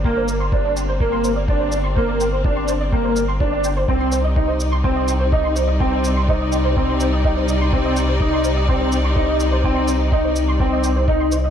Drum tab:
SH |-x-x-x-x|-x-x-x-x|-x-x-x-x|-x-x-x-x|
BD |o-o-o-o-|o-o-o-o-|o-o-o-o-|o-o-o-o-|

SH |-x-x-x-x|-x-x-x-x|
BD |o-o-o-o-|o-o-o-o-|